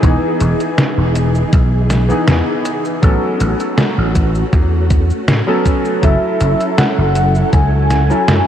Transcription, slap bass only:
0.03 E1
0.41 E1
0.98 E1
1.53 B1
2.11 muted slap bass stroke
2.28 E2
3.03 A1
3.41 A1
3.98 A1
4.53 E2
5.11 muted slap bass stroke
5.28 A2
6.03 F#1
6.41 F#1
6.98 F#1
7.53 C#2
8.11 muted slap bass stroke
8.28 F#2

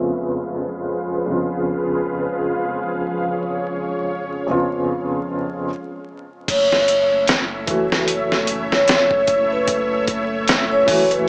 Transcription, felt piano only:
Already playing: F2 C#3 B3 F4
1.26 F2 C#3 B3
1.30 F4
4.47 F2 C#3 B3
4.51 F4
7.67 E3 A3 F#4
10.86 E3 A3
10.91 F#4

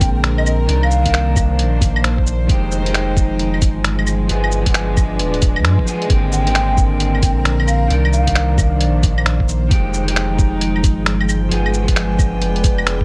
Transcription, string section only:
Already playing: D3 G#3 C4 A#4
0.68 D#3
0.91 A#3
1.18 D4
1.52 C5
2.49 F3
2.61 G#3 D#4
4.48 D4
4.66 B4
6.09 D3
6.67 C4
6.72 A#4
7.90 D#3
8.13 A#3 D4
8.19 C5
9.71 F3
9.96 G#3
10.19 D#4
10.26 G5
11.92 D4
12.34 B4

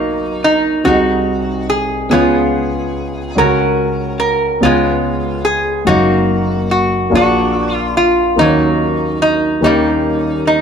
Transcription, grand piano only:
Already playing: B1 B2 A#3 D#4 F#4 A#4 D#5
0.84 C2 C3 C4 D#4 F#4 G#4 D#5
2.10 C#2 C#3 B3 C#4 F4 G#4 C#5
3.35 C#2 C#3 C#4 F#4 G#4
3.45 A#4
4.61 C#2 C#3 B3 C#4 F4 G#4 C#5
5.85 F#1 F#2 G#3 C#4 D#4 F#4 C#5
5.91 A#3
7.10 A#1 A#2 A#3 D4 G#4 C#5 F5
7.20 D5
8.36 D#2 D#3 A#3 C#4 D#4 F#4 C5
8.46 C#5
9.61 D#2 D#3 A#3 C#4 D#4 G4 C#5

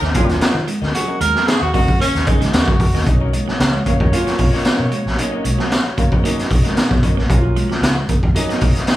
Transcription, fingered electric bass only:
0.02 D#2
0.28 D#2
0.54 D#3
0.82 D2
1.21 D#2
1.61 D#2
1.88 C#2
2.15 D#2
2.27 A#1
2.41 C#2
2.53 D#2
2.67 C#2
2.93 D#2
3.07 B1
3.60 C#2
4.00 D#2
4.27 muted fingered electric bass stroke
4.39 B1
4.79 B2
5.06 A#1
5.45 B1
5.98 muted fingered electric bass stroke
6.12 C#2
6.37 muted fingered electric bass stroke
6.51 B1
6.91 B2
7.17 A#1
7.30 B1
7.81 C#2
8.23 D#2
8.49 muted fingered electric bass stroke
8.62 B1

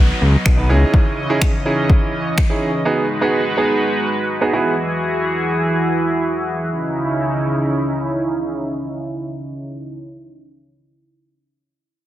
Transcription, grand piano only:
Already playing: B3 D#4 F#4 B4
0.57 B3 D#4 F#4 B4
0.69 C#4 D#4 E4 G#4
1.29 C#4 D#4 E4 G#4
1.65 C#4 D#4 E4 G#4
2.49 C#4 D#4 E4 G#4
2.85 B3 D#4 F#4 G#4
3.21 B3 D#4 F#4 G#4
3.57 B3 D#4 F#4 G#4
4.41 B3 D#4 F#4 G#4
4.53 B3 E4 F#4 G#4

